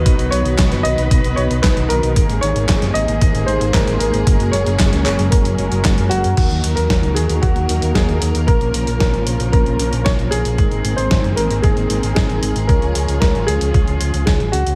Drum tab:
CC |----------------|----------------|----------------|x---------------|
HH |xxxxxxxxxxxxxxxx|xxxxxxxxxxxxxxxx|xxxxxxxxxxxxxxxx|xxxxxxxxxxxxxxxx|
CP |----x-------x---|----x-------x---|----x-x-----x---|----------------|
SD |----oo------o---|----oo------o---|----oo------o---|----o-------o---|
BD |o---o---o---o---|o---o---o---o---|o---o---o---o---|o---o---o---o---|

CC |----------------|----------------|----------------|
HH |xxxxxxxxxxxxxxxx|xxxxxxxxxxxxxxxx|xxxxxxxxxxxxxxxx|
CP |----------------|----------------|----------------|
SD |----o-------o---|----o-------o---|----o-------o---|
BD |o---o---o---o---|o---o---o---o---|o---o---o---o---|